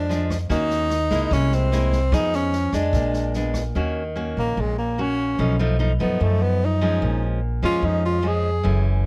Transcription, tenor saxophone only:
Already playing: D4
0.52 D#4
1.33 C#4
1.54 C4
2.14 D#4
2.35 C#4
2.75 D4
4.39 A#3
4.61 G#3
4.78 A#3
5.01 C#4
6.01 B3
6.22 A3
6.43 B3
6.65 D#4
7.65 F4
7.85 D#4
8.05 F4
8.27 G#4

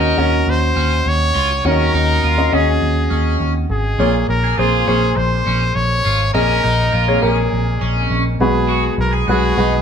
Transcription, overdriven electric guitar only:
Already playing: D#4
0.19 C#4
0.76 C#4
1.35 F4
1.65 C#4
1.94 D#4
2.23 F4
2.52 C#4
3.10 C#4
4.00 F4
4.44 G#4
4.58 F4
4.88 C#4
5.47 C#4
6.05 F4
6.34 C#4
6.64 D#4
6.93 F4
7.22 C#4
7.81 C#4
8.69 F#4
9.13 G#4
9.28 F#4
9.57 D#4

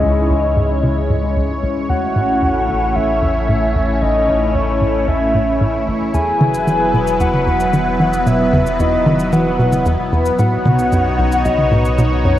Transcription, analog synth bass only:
0.03 C#2
0.30 C#2
0.56 G#2
0.83 C#3
1.10 G#2
1.36 C#2
1.63 C#2
1.89 E2
2.16 A2
2.42 E2
2.69 A1
2.96 A1
3.22 E2
3.49 A2
3.75 E2
4.02 A1
4.28 A1
4.55 E2
4.81 A2
5.08 E2
5.34 A2
5.61 A2
5.87 A1
6.14 E2
6.41 D#3
6.67 E3
6.94 B2
7.20 E2
7.47 E2
7.73 D#3
8.00 E3
8.26 B2
8.53 E2
8.79 E2
9.06 D#3
9.33 E3
9.59 B2
9.86 E2
10.12 E2
10.39 A2
10.65 B2
10.92 F#2
11.19 B1
11.45 B1
11.71 A2
11.98 B2
12.25 F#2

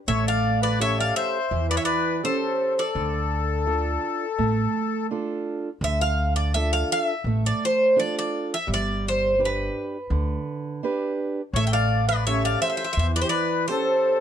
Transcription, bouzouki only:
0.08 E5
0.28 F5
0.63 D5
0.81 E5
1.00 F5
1.16 E5
1.71 D5
1.77 E5
1.85 D5
2.25 C5
2.79 D5
5.84 E5
6.01 F5
6.36 D5
6.54 E5
6.73 F5
6.92 F5
7.03 E5
7.46 D5
7.65 C5
8.00 D5
8.19 D5
8.54 E5
8.74 D5
9.08 C5
9.45 B4
11.56 E5
11.67 G5
11.73 F5
12.09 D5
12.27 E5
12.45 F5
12.62 E5
12.70 E5
12.77 E5
12.84 E5
12.93 E5
12.99 E5
13.16 D5
13.21 C5
13.29 D5
13.68 C5

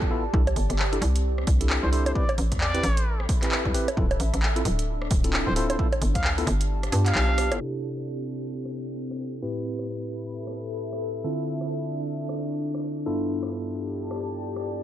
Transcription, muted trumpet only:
1.83 C5
1.92 C5
2.06 C5
2.15 D5
2.61 D5
5.47 C5
5.56 C5
5.70 C5
6.15 F5
7.06 F5

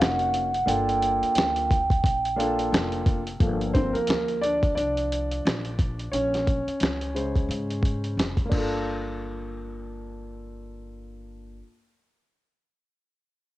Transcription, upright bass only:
0.00 F1
0.67 G1
1.22 muted upright bass stroke
1.36 D2
2.04 A#1
2.72 F1
3.40 G1
3.95 muted upright bass stroke
4.08 D2
4.77 C2
5.45 A#1
6.13 A#1
6.67 muted upright bass stroke
6.81 C#2
7.49 G#2
8.17 F1
8.52 G1

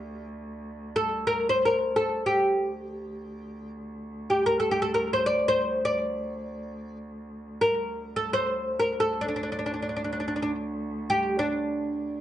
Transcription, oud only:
Already playing: G4
0.96 A4
1.27 A#4
1.49 C5
1.65 A#4
1.96 A4
2.26 G4
4.30 G4
4.46 A#4
4.60 A4
4.71 G4
4.82 A4
4.94 A#4
5.13 C5
5.26 D5
5.48 C5
5.85 D5
7.61 A#4
8.16 A4
8.33 C5
8.79 A#4
9.00 A4
9.21 D4
9.28 D4
9.36 D4
9.43 D4
9.52 D4
9.59 D4
9.66 D4
9.74 D4
9.82 D4
9.89 D4
9.96 D4
10.04 D4
10.13 D4
10.20 D4
10.28 D4
10.36 D4
10.42 D4
11.10 G4
11.39 D4

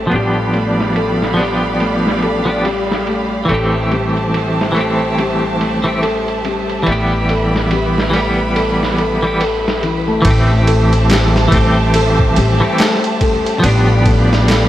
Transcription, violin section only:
Already playing: G4
0.11 D5 F5 B5
3.49 C5 E5 A5
6.87 B4 B5
10.24 G4 C5 E5 A5
13.63 D5 F5 B5

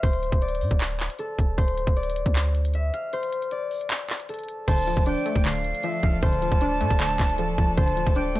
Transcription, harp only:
Already playing: A4 D5 F5
0.03 C5
0.42 D5
1.19 A4
1.58 C5
1.97 D5
2.75 E5
2.94 F5
3.13 C5
3.52 D5
4.29 A4
4.68 C5
5.06 D5
5.84 E5
6.03 F5
6.23 C5
6.61 D5
7.39 A4
7.77 C5
8.16 D5

